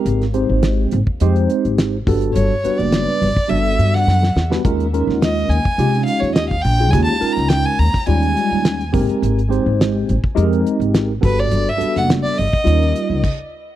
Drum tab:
CC |----------------|----------------|----------------|----------------|
HH |xxx-x-x-xxxxx-ox|x-xxx-o-xxx-----|xxx-x-x-xxxxx-ox|x-xxx-o-xxx-xxox|
SD |-o--o-------o---|----o------ooooo|---oo-------o---|---oo--o----o---|
BD |-------o------o-|-------o--------|o------o-----o--|o------o------o-|

CC |----------------|------------x---|
HH |xxx-x-x-xxxxx-ox|x-xxx-o-xxx-----|
SD |----o-------o---|---oo-----------|
BD |-------o------o-|-------o----o---|